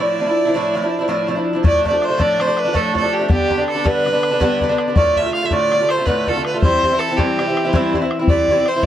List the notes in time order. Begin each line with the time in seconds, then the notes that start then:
Already playing: A2
0.00 F3 D4 E4 D5
0.19 A2 F3 D4 E4
0.27 F3 D4 E4
0.45 F3 D4 E4
0.54 A2 F3 D4 E4
0.74 A2 F3 E4
0.82 F3 D4 E4
0.99 F3 D4 E4
1.08 A2 F3 D4 E4
1.27 A2 F3 D4 E4
1.35 F3 D4 E4
1.53 F3 D4 E4
1.63 A2 F3 A3 D4, bodhran
1.67 D5
1.83 A2 F3 A3 D4 D5, bodhran
1.91 F3 A3 D4
2.02 C5, bodhran
2.08 F3 A3 D4
2.18 A2 F3 A3 D4 D5, bodhran
2.38 A2 F3 A3 D4 C5, bodhran
2.47 F3 A3 D4
2.57 B4, bodhran
2.65 F3 A3 D4
2.73 A2 F3 A3 D4 A4, bodhran
2.93 A2 F3 A3 D4 A4, bodhran
3.01 F3 A3 D4
3.13 G4
3.19 F3 A3 D4
3.28 G2 D3 B3 D4 G4, bodhran
3.48 G2 D3 B3 D4, bodhran
3.58 D3 B3 D4
3.68 A4, bodhran
3.75 D3 B3 D4
3.84 G2 D3 B3 D4 B4, bodhran
4.04 G2 D3 B3 D4, bodhran
4.13 D3 B3 D4
4.23 bodhran
4.31 D3 B3 D4
4.40 G2 D3 B3 D4, bodhran
4.61 G2 D3 B3 D4, bodhran
4.69 D3 B3 D4
4.78 bodhran
4.88 D3 B3 D4
4.95 A2 D3 A3 F4 D5, bodhran
5.16 A2 D3 A3 F4 E5, bodhran
5.26 D3 A3 F4
5.33 F5, bodhran
5.42 D3 A3 F4 E5
5.51 A2 D3 A3 F4 D5, bodhran
5.72 A2 D3 A3 F4, bodhran
5.80 D3 A3 F4
5.89 C5, bodhran
5.97 D3 A3 F4
6.05 A2 D3 A3 F4 B4, bodhran
6.27 A2 D3 A3 F4 A4, bodhran
6.36 D3 A3 F4
6.45 B4, bodhran
6.54 D3 A3 F4
6.62 G2 E3 C4 E4 C5, bodhran
6.83 G2 E3 C4 E4, bodhran
6.92 E3 C4 E4
6.99 A4, bodhran
7.09 E3 C4 E4
7.17 G2 E3 C4 E4 G4, bodhran
7.39 G2 E3 C4 E4, bodhran
7.48 E3 C4 E4
7.57 bodhran
7.65 E3 C4 E4
7.73 G2 E3 C4 E4, bodhran
7.93 G2 E3 C4 E4, bodhran
8.02 E3 C4 E4
8.11 bodhran
8.19 E3 C4 E4
8.28 G2 E3 C4 E4 D5, bodhran
8.48 G2 E3 C4, bodhran
8.52 E4
8.59 E3 C4 E4
8.66 C5, bodhran
8.76 E3 C4 E4
8.83 bodhran